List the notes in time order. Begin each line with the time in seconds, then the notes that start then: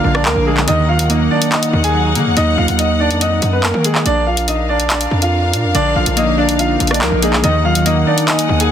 Already playing: D3 F3 A#3 D4 F4 A#4 F5
0.04 A#1 D3
0.15 D4 D5, cross-stick
0.25 D2 F3 A#3 A#4, clap
0.36 A#1
0.47 G#3 A#3 G#4
0.57 B1, clap
0.68 D#2 D#3 D#4 D#5 F#5, closed hi-hat
0.88 F#3 F4 F5
0.99 closed hi-hat
1.10 A#3 D#4 D#5, closed hi-hat
1.31 D4 D#4 D5
1.42 closed hi-hat
1.52 D#4 D#5, clap, closed hi-hat
1.63 closed hi-hat
1.73 D#2 D#3
1.84 G#4 G#5, closed hi-hat
1.94 F#3
2.15 D#3 A#3, closed hi-hat
2.26 D#2
2.37 D#2 D#4 D#5, closed hi-hat
2.58 D#2 F4 F5
2.68 D#2, closed hi-hat
2.79 D#4 D#5, closed hi-hat
3.00 D4 D5
3.11 F2, closed hi-hat
3.21 D#4 D#5, closed hi-hat
3.42 F#2, closed hi-hat
3.53 B3 B4
3.63 A#3 A#4, clap
3.74 D#3
3.84 G#3 G#4, closed hi-hat
3.95 clap
4.06 A#1 D4 A#4 D5 F5, closed hi-hat, swell
4.27 F4 F5
4.37 closed hi-hat
4.48 D#4 D#5, closed hi-hat
4.69 D4 D5
4.80 closed hi-hat
4.90 D4 D5, clap, closed hi-hat
5.01 closed hi-hat
5.11 F2
5.22 F4 F5, closed hi-hat
5.53 A#2, closed hi-hat
5.64 F2
5.75 A#1 D3 D4 D5, closed hi-hat
5.96 A#1 F3 F4 F5
6.06 A#1, closed hi-hat
6.17 A#3 D#4 D#5, closed hi-hat
6.38 D4 D5
6.49 closed hi-hat
6.59 F4 F5, closed hi-hat
6.80 A#1 D3, closed hi-hat
6.87 D5, cross-stick, closed hi-hat
6.92 D4, closed hi-hat
7.01 D2 F3 A#3 A#4, clap
7.12 A#1
7.22 G#3 A#3 G#4, closed hi-hat
7.33 B1, clap
7.44 D#2 D#3 D#4 A#4 D#5 F#5, closed hi-hat
7.64 F#3 F4 F5
7.75 closed hi-hat
7.86 A#3 D#4 D#5, closed hi-hat
8.07 D4 D#4 D5
8.18 closed hi-hat
8.28 D#4 D#5 G#5, clap, closed hi-hat
8.39 closed hi-hat
8.49 D#2 D#3
8.60 G#4 G#5, closed hi-hat